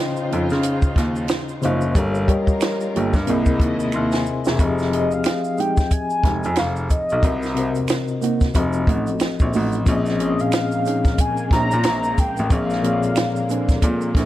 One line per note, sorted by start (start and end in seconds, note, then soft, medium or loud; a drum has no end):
0.00 1.62 C#3 medium
0.00 1.92 C#3 medium
0.00 1.63 C#4 medium
0.00 1.92 D#4 medium
0.00 1.92 F4 medium
0.00 1.63 C5 medium
0.00 1.91 C5 medium
0.00 1.64 D#5 medium
0.00 1.65 F5 medium
0.00 0.80 G5 medium
0.16 shaker soft
0.30 0.48 F2 medium
0.30 0.50 F3 medium
0.30 0.50 C4 medium
0.30 0.50 D#4 medium
0.30 closed hi-hat medium
0.50 0.89 C#3 medium
0.50 snare soft
0.50 shaker soft
0.63 closed hi-hat medium
0.63 shaker medium
0.82 kick medium
0.82 shaker soft
0.96 1.24 D#2 medium
0.96 kick medium
0.96 snare soft
0.96 closed hi-hat medium
1.16 shaker soft
1.28 finger snap medium
1.28 snare loud
1.28 closed hi-hat medium
1.28 shaker medium
1.48 shaker soft
1.62 1.91 F#1 medium
1.62 1.91 C#3 medium
1.62 1.82 F3 medium
1.62 1.82 C4 medium
1.62 1.91 C#4 medium
1.62 1.83 D#4 medium
1.62 1.92 C5 medium
1.62 1.92 D#5 medium
1.62 1.93 F5 medium
1.62 closed hi-hat medium
1.62 shaker soft
1.81 shaker soft
1.95 2.23 G1 loud
1.95 2.24 G3 medium
1.95 3.26 G3 medium
1.95 3.26 C#4 medium
1.95 3.26 F4 medium
1.95 2.24 G4 medium
1.95 3.26 A#4 medium
1.95 2.25 A#4 medium
1.95 2.25 C#5 medium
1.95 2.26 F5 medium
1.95 kick loud
1.95 closed hi-hat medium
1.95 shaker medium
2.15 shaker soft
2.28 3.27 G3 medium
2.28 3.27 G4 medium
2.28 3.28 A#4 medium
2.28 3.28 C#5 medium
2.28 3.29 D#5 medium
2.28 kick medium
2.28 closed hi-hat medium
2.47 kick medium
2.47 shaker soft
2.61 finger snap medium
2.61 snare loud
2.61 closed hi-hat medium
2.61 shaker medium
2.81 shaker soft
2.94 3.11 G1 medium
2.94 3.13 A#3 medium
2.94 3.14 F4 medium
2.94 3.14 G4 medium
2.94 closed hi-hat medium
3.13 3.26 G2 loud
3.13 kick medium
3.13 snare soft
3.13 shaker soft
3.26 3.56 C2 medium
3.26 4.13 C3 medium
3.26 4.58 C3 medium
3.26 4.58 G#3 medium
3.26 4.58 A#3 medium
3.26 3.50 A#3 medium
3.26 4.13 C4 medium
3.26 4.58 E4 medium
3.26 4.14 E4 medium
3.26 3.51 E4 medium
3.26 3.94 G#4 medium
3.26 3.51 G#4 medium
3.26 3.94 A#4 medium
3.26 4.58 D#5 medium
3.26 3.95 D#5 medium
3.26 closed hi-hat medium
3.26 shaker medium
3.46 kick medium
3.46 shaker soft
3.60 3.88 D#2 medium
3.60 kick medium
3.60 closed hi-hat medium
3.80 shaker soft
3.92 4.22 D#2 medium
3.92 4.12 E5 medium
3.92 4.12 C6 medium
3.92 finger snap medium
3.92 shaker medium
4.12 4.44 C5 soft
4.12 4.44 G#5 medium
4.12 snare medium
4.12 shaker soft
4.26 shaker soft
4.45 4.58 E1 medium
4.45 4.59 G#4 medium
4.45 4.77 E5 medium
4.45 snare medium
4.45 shaker medium
4.58 5.03 F1 medium
4.58 4.87 F3 medium
4.58 4.88 C4 medium
4.58 4.88 G4 medium
4.58 4.89 G#4 medium
4.58 4.89 D#5 medium
4.58 kick loud
4.58 closed hi-hat medium
4.58 shaker medium
4.79 snare soft
4.79 shaker soft
4.91 6.05 F3 medium
4.91 6.06 C4 medium
4.91 6.06 G4 medium
4.91 6.07 G#4 medium
4.91 5.15 D#5 medium
4.91 6.07 D#5 medium
4.91 closed hi-hat medium
5.11 5.19 F1 soft
5.11 5.61 F5 medium
5.11 shaker soft
5.24 finger snap medium
5.24 muted nylon-string guitar stroke soft
5.24 snare loud
5.24 closed hi-hat medium
5.24 shaker medium
5.44 shaker soft
5.58 5.81 G#3 medium
5.58 5.81 D#4 medium
5.58 5.82 G4 medium
5.58 5.94 G5 loud
5.58 closed hi-hat medium
5.58 shaker soft
5.77 kick medium
5.77 snare soft
5.77 closed hi-hat soft
5.77 shaker soft
5.91 6.60 G#5 loud
5.91 muted nylon-string guitar stroke soft
5.91 kick medium
5.91 closed hi-hat medium
5.91 shaker medium
6.10 shaker soft
6.24 6.40 F1 medium
6.24 6.47 G#3 medium
6.24 6.48 D#4 medium
6.24 6.48 G4 medium
6.24 kick medium
6.24 snare soft
6.24 closed hi-hat medium
6.44 6.56 F2 medium
6.44 closed hi-hat soft
6.44 shaker soft
6.55 6.90 F5 loud
6.55 finger snap medium
6.55 snare loud
6.55 closed hi-hat medium
6.55 shaker medium
6.60 6.86 F1 medium
6.76 shaker soft
6.90 8.18 D#5 loud
6.90 kick medium
6.90 closed hi-hat medium
6.90 shaker soft
7.10 7.22 B1 medium
7.10 shaker soft
7.22 7.66 C2 loud
7.22 7.51 C3 medium
7.22 7.52 C4 medium
7.22 7.52 F#4 medium
7.22 7.53 A#4 medium
7.22 7.53 D#5 medium
7.22 kick loud
7.22 closed hi-hat medium
7.22 shaker medium
7.43 snare soft
7.43 shaker soft
7.55 8.54 C3 medium
7.55 8.53 C4 medium
7.55 8.54 F#4 medium
7.55 8.56 A#4 medium
7.55 8.56 C5 medium
7.55 closed hi-hat medium
7.75 7.82 F1 soft
7.75 closed hi-hat soft
7.75 shaker soft
7.88 finger snap medium
7.88 muted nylon-string guitar stroke soft
7.88 snare loud
7.88 closed hi-hat medium
7.88 shaker medium
8.08 shaker soft
8.21 8.44 A#3 medium
8.21 8.45 D#4 medium
8.21 8.45 F#4 medium
8.21 closed hi-hat medium
8.21 shaker soft
8.41 kick medium
8.41 snare soft
8.41 closed hi-hat soft
8.41 shaker soft
8.54 8.83 F1 medium
8.54 9.68 F3 medium
8.54 9.69 C4 medium
8.54 9.69 F#4 medium
8.54 9.70 A4 medium
8.54 9.70 D#5 medium
8.54 kick medium
8.54 closed hi-hat medium
8.54 shaker medium
8.73 shaker soft
8.87 9.04 A1 medium
8.87 9.11 A3 medium
8.87 9.11 D#4 medium
8.87 9.12 F#4 medium
8.87 kick medium
8.87 closed hi-hat medium
9.07 closed hi-hat soft
9.07 shaker soft
9.20 finger snap medium
9.20 muted nylon-string guitar stroke soft
9.20 snare loud
9.20 closed hi-hat medium
9.20 shaker medium
9.39 9.52 A#1 medium
9.39 kick medium
9.39 shaker soft
9.53 9.82 A1 medium
9.53 9.77 A3 medium
9.53 9.77 D#4 medium
9.53 9.78 F#4 medium
9.53 open hi-hat soft
9.53 shaker soft
9.72 closed hi-hat soft
9.72 shaker soft
9.86 10.30 A#1 loud
9.86 10.15 A#2 medium
9.86 10.15 F3 medium
9.86 14.25 A#3 medium
9.86 10.16 C4 medium
9.86 10.16 C#4 medium
9.86 10.16 G#4 medium
9.86 10.17 D#5 loud
9.86 kick loud
9.86 closed hi-hat medium
9.86 shaker medium
10.06 snare soft
10.06 shaker soft
10.18 11.33 A#2 medium
10.18 11.33 F3 medium
10.18 11.34 C4 medium
10.18 11.34 C#4 medium
10.18 11.34 G#4 medium
10.18 10.42 D#5 medium
10.18 11.35 D#5 medium
10.18 closed hi-hat medium
10.39 10.46 A#1 soft
10.39 11.22 F5 loud
10.39 closed hi-hat soft
10.39 shaker soft
10.52 finger snap medium
10.52 muted nylon-string guitar stroke soft
10.52 snare loud
10.52 closed hi-hat medium
10.52 shaker medium
10.72 shaker soft
10.85 11.08 C#4 medium
10.85 11.09 D#4 medium
10.85 11.09 G#4 medium
10.85 closed hi-hat medium
10.85 shaker soft
11.05 kick medium
11.05 snare soft
11.05 closed hi-hat soft
11.05 shaker soft
11.18 11.52 G#5 loud
11.18 muted nylon-string guitar stroke soft
11.18 kick medium
11.18 closed hi-hat medium
11.18 shaker medium
11.37 shaker soft
11.51 11.68 A#1 medium
11.51 11.74 C#4 medium
11.51 11.75 D#4 medium
11.51 11.75 G#4 medium
11.51 12.21 A#5 loud
11.51 kick medium
11.51 snare soft
11.51 closed hi-hat medium
11.71 11.84 A#2 medium
11.71 closed hi-hat soft
11.71 shaker soft
11.83 12.13 A#1 medium
11.83 finger snap medium
11.83 snare loud
11.83 closed hi-hat medium
11.83 shaker medium
12.04 shaker soft
12.18 12.51 G5 loud
12.18 kick medium
12.18 closed hi-hat medium
12.18 shaker medium
12.37 12.49 A1 medium
12.37 closed hi-hat soft
12.37 shaker soft
12.49 12.94 A#1 loud
12.49 12.79 A#2 medium
12.49 14.25 D3 medium
12.49 12.79 F3 medium
12.49 12.79 C4 medium
12.49 12.80 G#4 medium
12.49 12.80 D5 medium
12.49 14.25 F5 loud
12.49 kick loud
12.49 closed hi-hat medium
12.49 shaker medium
12.70 snare soft
12.70 shaker soft
12.82 13.97 A#2 medium
12.82 13.97 F3 medium
12.82 13.98 C4 medium
12.82 13.98 G#4 medium
12.82 12.92 C#5 medium
12.82 closed hi-hat medium
12.92 14.02 D5 medium
13.03 13.10 A#2 soft
13.03 closed hi-hat soft
13.03 shaker soft
13.16 finger snap medium
13.16 muted nylon-string guitar stroke soft
13.16 snare loud
13.16 closed hi-hat medium
13.16 shaker medium
13.36 shaker soft
13.49 13.72 C4 medium
13.49 13.72 D4 medium
13.49 13.73 G#4 medium
13.49 closed hi-hat medium
13.49 shaker soft
13.69 kick medium
13.69 snare soft
13.69 closed hi-hat soft
13.69 shaker soft
13.82 14.10 A#2 medium
13.82 muted nylon-string guitar stroke soft
13.82 kick medium
13.82 closed hi-hat medium
13.82 shaker medium
14.01 shaker soft
14.15 14.25 A#1 medium
14.15 14.25 C4 medium
14.15 14.25 D4 medium
14.15 14.25 G#4 medium
14.15 kick medium
14.15 snare soft
14.15 closed hi-hat medium